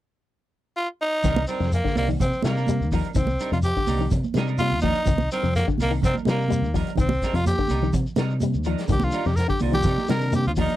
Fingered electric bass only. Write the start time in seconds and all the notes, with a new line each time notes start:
1.24 C2
1.60 F2
1.96 C2
2.21 C3
2.33 muted fingered electric bass stroke
2.44 C3
2.80 D#2
3.16 C2
3.52 F2
3.87 C2
4.12 C3
4.24 muted fingered electric bass stroke
4.35 C3
4.71 D#2
5.07 C2
5.43 F2
5.79 C2
6.03 C3
6.15 muted fingered electric bass stroke
6.26 C3
6.62 D#2
6.98 C2
7.33 F2
7.70 C2
7.94 C3
8.06 muted fingered electric bass stroke
8.17 C3
8.54 D#2
8.90 C2
9.26 F2
9.62 C2
9.85 C3
9.99 muted fingered electric bass stroke
10.10 C3
10.47 D#2